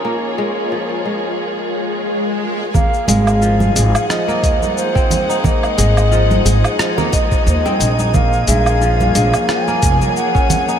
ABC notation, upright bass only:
X:1
M:4/4
L:1/8
Q:"Swing 16ths" 1/4=89
K:Abmix
V:1 name="Upright bass" clef=bass
z8 | z A,,,2 A,,, z E,, z2 | z A,,,2 A,,, z2 E,, B,,,- | B,,, B,,,2 B,,, z F,,, z2 |]